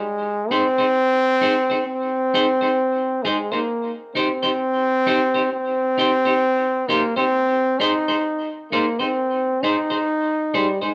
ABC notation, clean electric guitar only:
X:1
M:4/4
L:1/16
Q:"Swing 16ths" 1/4=66
K:Ab
V:1 name="Clean electric guitar"
z2 [EAc] [EAc] z2 [EAc] [EAc] z2 [EAc] [EAc] z2 [EAc] [EAc] | z2 [EGc] [EGc] z2 [EGc] [EGc] z2 [EGc] [EGc] z2 [EGc] [EGc] | z2 [EAc] [EAc] z2 [EAc] [EAc] z2 [EAc] [EAc] z2 [EAc] [EAc] |]